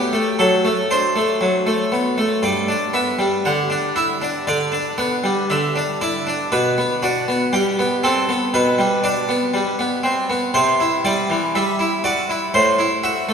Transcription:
Already playing: B3 G4
0.13 A3
0.39 F#3 A4
0.65 A3
0.91 D4 C5
1.16 A3
1.41 F#3
1.67 A3
1.92 B3
2.18 A3
2.43 G2 D5
2.68 D4
2.94 B3 E5
3.19 G3
3.45 D3 F#5
3.70 D4
3.96 E4 E5
4.22 D4
4.47 D3 D5
4.72 D4
4.98 B3 F#5
5.24 G3
5.50 D3 E5
5.76 D4
6.01 E4 D5
6.27 D4
6.52 B2 B4
6.78 B3
7.02 D4 F#4
7.28 B3
7.53 G3 G4
7.79 B3
8.03 C4 A4
8.29 B3
8.54 B2 B4
8.78 G3
9.04 D4 D5
9.29 B3
9.54 G3
9.79 B3
10.03 C4
10.30 B3
10.54 C3 C5
10.80 E4
11.05 G3 D5
11.30 E3
11.55 G3 E5
11.79 E4
12.04 F#4 D5
12.29 E4
12.54 A2 C5
12.79 E4
13.03 F#4 E5
13.29 A3

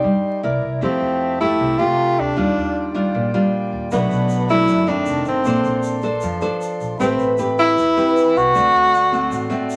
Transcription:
Already playing: D#4 G4 D5 C6
0.04 G2 G3
0.42 C2 E4 A#4 D5 A#5
0.62 C2
0.81 F2 F3 A3 C4 E4 G4 E5 A5
1.02 F2
1.41 A3 E4 G4
1.60 C2 C3
1.79 A3 F4 G4
2.18 D2 D4
2.36 D#2 D#3 G3 D4 F4 D5 G5
2.57 D#2
2.94 G3 D4 F4
3.14 A#1 A#2
3.34 G3 D4 F4
3.72 D#2
3.91 B1 B2 F#3 A3 B3 D4 A4 D5 B5, shaker
4.10 B1, shaker
4.29 shaker
4.49 F#3 A3 D4 E4, shaker
4.68 F#1 F#2, shaker
4.87 D#3 A3 C4 D4, shaker
5.05 F1 F4 D#5 A5, shaker
5.25 G1 C4, shaker
5.43 A#1 A#3 D4 A4 D5 C6, shaker
5.47 C5
5.64 A#1, shaker
5.83 shaker
6.02 D4 A4 C5, shaker
6.21 F2 F3, shaker
6.41 D4 A4 C5, shaker
6.61 shaker
6.80 A#1, shaker
6.98 A1 A3 C4 G4 B4 B5, shaker
7.19 A1, shaker
7.38 C4 G4 B4, shaker
7.58 E4, shaker
7.77 E2 E3, shaker
7.97 C4 G4 B4, shaker
8.17 shaker
8.35 C2 F#4, shaker
8.53 D2 D3 A3 C4 F#4 D5 C6, shaker
8.74 D2, shaker
8.94 shaker
9.12 A3 C4 F#4, shaker
9.30 A1 A2, shaker
9.50 A3 C4 F#4, shaker
9.70 shaker

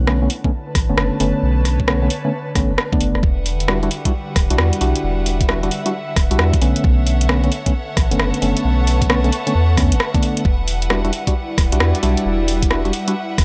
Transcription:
Already playing: B1 D3 E4 F#5
0.07 D3 A3 B3 C#4, cross-stick
0.14 B4 A5
0.22 D3 A3 B3 C#4
0.30 open hi-hat
0.44 D3 A3 B3 C#4, kick
0.75 A1, kick, cross-stick, open hi-hat
0.89 F#1 D3 A3 B3 C#4
0.94 F#1 C#5, cross-stick
1.20 F#1 D3 A3 B3 C#4, open hi-hat
1.43 B1
1.65 cross-stick, open hi-hat
1.80 kick
1.87 D3 A3 B3 C#4, cross-stick
2.02 D3 A3 B3 C#4
2.10 open hi-hat
2.25 D3 A3 B3 C#4
2.55 A1 D3 A3 B3 C#4, kick, cross-stick, open hi-hat
2.70 F#1
2.78 cross-stick
2.92 D3 A3 B3 D4, kick
3.01 F#1, open hi-hat
3.15 F#1, cross-stick
3.23 E1 G3 B4 E5 F#5, kick
3.46 open hi-hat
3.60 F#5, closed hi-hat
3.67 G3 D4 E4 F#4, cross-stick
3.83 G3 D4 E4 F#4, closed hi-hat
3.91 open hi-hat
4.05 G3 D4 E4 F#4, kick, closed hi-hat
4.36 D1, kick, cross-stick, open hi-hat
4.50 B1 G3 D4 E4 F#4, closed hi-hat
4.56 E2 E5, cross-stick
4.73 closed hi-hat
4.81 B1 G3 D4 E4 F#4, open hi-hat
4.96 closed hi-hat
5.04 E1
5.26 open hi-hat
5.41 kick, closed hi-hat
5.49 G3 D4 E4 F#4, cross-stick
5.63 G3 D4 E4 F#4, closed hi-hat
5.71 open hi-hat
5.86 G3 D4 E4 F#4, closed hi-hat
6.16 D1, kick, cross-stick, open hi-hat
6.31 B1 G3 D4 E4 F#4, closed hi-hat
6.39 E2, cross-stick
6.53 kick, closed hi-hat
6.61 B1 D3 A3 B3 C#4, open hi-hat
6.76 closed hi-hat
6.84 B1 A4 C#5, kick
7.07 open hi-hat
7.21 closed hi-hat
7.29 D3 A3 B3 C#4 B4, cross-stick
7.44 D3 A3 B3 C#4, closed hi-hat
7.52 open hi-hat
7.66 D3 A3 B3 C#4 A5, kick, closed hi-hat
7.97 A1, kick, cross-stick, open hi-hat
8.11 F#1 D3 A3 B3 C#4, closed hi-hat
8.17 F#1 C#6, cross-stick
8.34 closed hi-hat
8.42 F#1 D3 A3 B3 C#4, open hi-hat
8.57 closed hi-hat
8.65 B1
8.87 open hi-hat
9.02 kick, closed hi-hat
9.10 D3 A3 B3 C#4, cross-stick
9.24 D3 A3 B3 C#4, closed hi-hat
9.32 open hi-hat
9.47 D3 A3 B3 C#4, closed hi-hat
9.55 E2
9.77 D3 A3 B3 C#4, kick, cross-stick, open hi-hat
9.92 F#1, closed hi-hat
10.00 cross-stick
10.14 D3 A3 B3 D4, kick, closed hi-hat
10.23 open hi-hat
10.37 closed hi-hat
10.45 E1 G3 E4 B4, kick
10.68 open hi-hat
10.73 G3
10.82 closed hi-hat
10.90 G3 D4 E4 F#4 D5, cross-stick
11.04 G3 D4 E4 F#4, closed hi-hat
11.13 open hi-hat
11.27 G3 D4 E4 F#4, kick, closed hi-hat
11.58 D1, kick, cross-stick, open hi-hat
11.72 B1 G3 D4 E4 F#4, closed hi-hat
11.80 E2, cross-stick
11.95 closed hi-hat
12.03 B1 G3 D4 E4 F#4, open hi-hat
12.09 F#5
12.17 closed hi-hat
12.26 E1 E5
12.48 open hi-hat
12.63 kick, closed hi-hat
12.70 G3 D4 E4 F#4, cross-stick
12.85 G3 D4 E4 F#4, closed hi-hat
12.93 open hi-hat
13.08 G3 D4 E4 F#4, closed hi-hat
13.38 D1, kick, cross-stick, open hi-hat

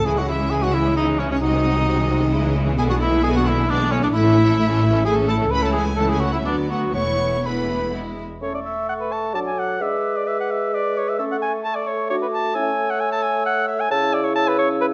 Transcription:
0.05 C#2 C#3 E3 G#3 E4 G#4 G#5
0.17 E3 G#3 C#4 F#4 G#4 F#5
0.28 E3 G#3 E4 E5
0.40 E3 G#3 C#4 G#4
0.50 E3 G#3 E4 G#4 G#5
0.62 E3 G#3 C#4 F#4 G#4 F#5
0.74 E3 G#3 E4 E5
0.85 E3 G#3 C#4 G#4
0.96 E3 G#3 D#4 E4 D#5
1.08 E3 G#3 C#4 G#4
1.19 E3 G#3 C#4 E4 C#5
1.30 E3 G#3 C#4 G#4 C#5
1.41 C2 C3 F#3 G#3 C4 D#4 F#4 D#5
1.54 D#3 F#3 D#4 G#4
1.65 F#3 G#3 C4 F#4
1.77 D#3 F#3 D#4 G#4
1.87 F#3 G#3 C4 F#4
1.99 D#3 F#3 D#4 G#4
2.10 F#3 G#3 C4 F#4
2.21 D#3 F#3 D#4 G#4
2.32 C#2 C#3 G#3 E4
2.44 E3 C#4 G#4
2.55 G#3 E4
2.66 E3 C#4 G#4
2.77 B1 B2 D3 G#3 B3 E4 G#4 G#5
2.90 E3 B3 D4 F#4 G#4 F#5
3.00 D3 G#3 B3 E4 E5
3.12 E3 B3 D4 G#4
3.23 D3 G#3 B3 E4 G#4 G#5
3.35 E3 B3 D4 F#4 G#4 F#5
3.45 D3 G#3 B3 E4 E5
3.56 E3 B3 D4 G#4
3.68 D3 G#3 B3 D4 E4 D5
3.80 E3 B3 D4 G#4
3.90 D3 G#3 B3 C#4 E4 C#5
4.02 E3 B3 D4 G#4 D5
4.13 A1 A2 A3 E4 E5
4.25 E3 C#4 A4
4.36 A3 E4
4.47 E3 C#4 A4
4.58 A3 E4
4.69 E3 C#4 A4
4.81 A3 E4
4.92 E3 C#4 A4
5.04 A3 E4 G#4 G#5
5.16 E3 C#4 A4
5.27 A3 E4 A4 A5
5.39 E3 C#4 A4
5.50 C#2 E3 A3 C#4 E4 B4 B5
5.62 A4 A5
5.73 G#4 G#5
5.96 E3 A3 C#4 E4 A4 A5
6.01 A4
6.10 G#4 G#5
6.20 F#4 F#5
6.33 E4 E5
6.44 D2 F#3 B3 D4 D5
6.70 F#4 F#5
6.93 E1 E2 E3 A3 B3 E4 C#5 C#6
7.43 E3 A3 B3 E4 B4 B5
7.93 E3 G#3 B3 E4
8.41 A3 C#4 A4 C#5 C#6
8.54 D5
8.65 E5
8.89 F#5
9.00 B4
9.12 A5
9.34 F#3 D4 A4 A5 D6
9.47 G#5
9.59 F#5
9.80 G#3 D4 B4 E5 D6
10.17 D5
10.26 B4 E5 D6
10.40 F#5
10.51 E5
10.72 B4 D5 D6
10.98 C#5
11.09 E5
11.19 A3 C#4 A4 E5 C#6
11.31 F#5
11.42 G#5
11.64 A4 A5 C#6
11.75 D5
11.87 C#5
12.09 D4 F#4 C#5 D6
12.22 B4
12.33 A5
12.54 C#4 E4 C#5 G#5 E6
12.90 F#5
13.01 G#5
13.12 A5
13.23 G#5
13.46 F#5
13.68 E5
13.80 G#5
13.91 C#3 C#4 E4 C#5 A5 E6
14.14 D5
14.24 C#5
14.35 C#5 A5 E6
14.48 B4
14.59 C#5
14.81 B4

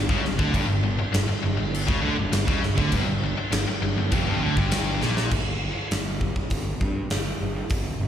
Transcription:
0.09 C#2 C#3, kick
0.24 G1 G2, snare
0.39 D2 D3, kick
0.53 G1 G2, kick, crash
0.68 G1 G2
0.83 G1 G2
0.99 muted distorted electric guitar stroke, muted picked electric bass stroke
1.13 G1 G2, snare, crash
1.28 muted distorted electric guitar stroke, muted picked electric bass stroke
1.43 G1 G2
1.57 G1 G2
1.75 crash
1.87 C#2 C#3, kick
2.02 D2 D3
2.18 G1 G2
2.32 G1 G2, snare, crash
2.47 C#2 C#3, kick
2.63 G1 G2, snare
2.78 D2 D3, kick
2.92 G1 G2, kick, crash
3.07 G1 G2
3.21 G1 G2
3.35 muted picked electric bass stroke, muted distorted electric guitar stroke
3.52 G1 G2, snare, crash
3.67 muted picked electric bass stroke, muted distorted electric guitar stroke
3.81 G1 G2
3.97 G1 G2
4.12 F1 F2, kick, crash
4.26 G1 G2
4.41 D2 D3
4.57 G1 G2, kick
4.71 snare, crash
5.01 A#1 A#2, snare
5.17 snare
5.31 G1, kick, crash
5.91 G1, snare, open hi-hat
6.21 kick
6.36 kick
6.50 G1, kick, open hi-hat
6.80 G2, kick
7.10 G1, snare, open hi-hat
7.41 G1
7.70 G1, kick, open hi-hat
8.00 G1

